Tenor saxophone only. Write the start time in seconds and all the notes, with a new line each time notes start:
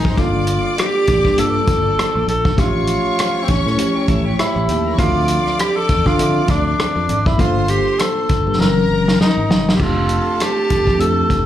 Already playing: D#4
0.19 F4
0.79 G4
1.40 A4
2.29 A4
2.59 F4
3.44 C4
3.50 C#4
4.39 E4
4.99 F4
5.59 G4
5.76 A4
6.07 F4
6.50 D4
7.27 E4
7.40 F4
7.70 G4
8.00 A4
8.60 A#4
9.20 D#4
9.75 G4
9.81 F4
10.41 G4
11.00 A4